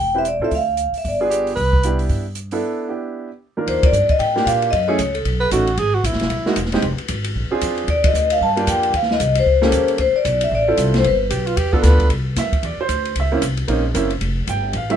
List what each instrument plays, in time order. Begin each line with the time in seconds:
Already playing: vibraphone G5
0.00 upright bass E1
0.14 grand piano C4 E4 G4 B4, vibraphone E5
0.25 vibraphone D5, closed hi-hat
0.40 upright bass A2, grand piano C4 E4 F4 A4
0.44 vibraphone E5
0.51 upright bass D2, vibraphone F5, kick, open hi-hat
0.77 closed hi-hat
0.92 muted upright bass stroke, open hi-hat
0.98 vibraphone E5
1.05 upright bass G1, vibraphone D5, kick, open hi-hat
1.20 grand piano B3 D4 F4 G#4
1.30 tenor saxophone G4, closed hi-hat
1.47 open hi-hat
1.56 upright bass C2, tenor saxophone B4, kick, open hi-hat
1.73 kick
1.83 grand piano B3 D4 E4 G4, closed hi-hat
1.99 open hi-hat
2.09 upright bass G2, kick, open hi-hat
2.35 closed hi-hat
2.51 grand piano B3 D4 E4 A4, open hi-hat
2.88 grand piano B3 D4 E4 G4
3.57 grand piano D#3 A#3 D4 F4 A#4
3.67 upright bass D#2, vibraphone C5, kick, ride
3.83 vibraphone D5, kick, ride
3.92 upright bass G2, hi-hat pedal
4.09 vibraphone D#5, kick, ride
4.19 upright bass A2, vibraphone G5, kick, ride
4.36 grand piano A#3 D4 F4 G4, snare
4.46 upright bass A#2, vibraphone F5, kick, hi-hat pedal, ride
4.62 ride
4.71 upright bass F#2, vibraphone D#5, kick, ride
4.88 grand piano A3 C#4 E4 G#4, vibraphone C#5
4.99 upright bass C#2, kick, hi-hat pedal, ride
5.15 vibraphone A4, ride
5.25 upright bass B1, kick, ride
5.40 tenor saxophone B4
5.51 upright bass A1, grand piano A3 C#4 D#4 F#4, tenor saxophone F#4, kick, hi-hat pedal, ride
5.67 ride
5.77 upright bass G#1, tenor saxophone G#4, kick, ride
5.95 tenor saxophone F#4
6.04 upright bass A#1, tenor saxophone E4, kick, hi-hat pedal, ride
6.12 upright bass G#1, snare
6.20 upright bass E1, snare, ride
6.30 upright bass B1, kick, ride
6.45 grand piano G#3 A#3 D#4 F#4, muted upright bass stroke, snare
6.56 upright bass E1, kick, hi-hat pedal, ride
6.65 snare
6.72 grand piano G#3 C4 D#4 G4, snare, ride
6.82 upright bass F1, kick, ride
6.98 muted upright bass stroke, ride
7.08 upright bass G#1, kick, hi-hat pedal, ride
7.24 ride
7.35 upright bass A#1, kick
7.51 grand piano C4 D4 F4 G#4, muted upright bass stroke
7.61 upright bass F2, kick, hi-hat pedal, ride
7.78 ride
7.88 upright bass D#2, vibraphone D5, kick, ride
8.04 vibraphone D#5, kick, ride
8.13 upright bass D2, hi-hat pedal
8.30 vibraphone F5, ride
8.41 upright bass G2, vibraphone A5, kick
8.57 grand piano A#3 D4 F4 G4, ride
8.67 upright bass F2, vibraphone G5, kick, hi-hat pedal, ride
8.83 ride
8.93 upright bass D#2, vibraphone F5, kick, ride
9.03 snare
9.11 vibraphone D#5, snare
9.20 upright bass C2, kick, hi-hat pedal, ride
9.35 vibraphone C5, ride
9.46 upright bass C#2, kick
9.62 grand piano A#3 C#4 G4 A4, snare
9.72 upright bass D#2, kick, hi-hat pedal, ride
9.88 ride
9.98 upright bass D2, vibraphone C5, kick, ride
10.13 vibraphone D5, muted upright bass stroke
10.25 upright bass B1, kick, hi-hat pedal, ride
10.41 vibraphone E5, ride
10.51 upright bass A1, vibraphone D5, kick
10.68 grand piano C4 E4 F4 A4
10.77 upright bass C2, kick, hi-hat pedal, ride
10.94 vibraphone C5, snare, ride
11.04 upright bass G1, vibraphone B4, kick, ride
11.30 upright bass B1, tenor saxophone G4, kick, hi-hat pedal, ride
11.47 tenor saxophone F4, ride
11.57 upright bass E2, tenor saxophone G4, kick, ride
11.72 grand piano B3 D4 F4 A4, tenor saxophone A4, kick
11.83 upright bass D2, tenor saxophone B4, kick, snare, hi-hat pedal, ride
12.00 kick, ride
12.09 upright bass C2, kick, ride
12.36 upright bass F2, grand piano E5, kick, snare, hi-hat pedal, ride
12.52 muted upright bass stroke, kick, ride
12.63 upright bass E2, grand piano D5, kick, ride
12.77 grand piano C5, muted upright bass stroke
12.89 upright bass D2, kick, hi-hat pedal, ride
13.05 ride
13.16 upright bass C#2, kick, ride
13.20 grand piano E5
13.32 grand piano A#3 C4 C#4 E4
13.42 upright bass C2, kick, hi-hat pedal, ride
13.57 ride
13.68 upright bass A#1, grand piano A#3 C4 C#4 D#4, kick, ride
13.94 upright bass F#1, grand piano A#3 C4 C#4 E4, kick, hi-hat pedal, ride
14.10 ride
14.21 upright bass F1, kick, ride
14.47 upright bass G1, grand piano G5, kick, hi-hat pedal, ride
14.73 upright bass A1, grand piano F5, kick, ride
14.90 grand piano G3 A3 C4 E4 E5, ride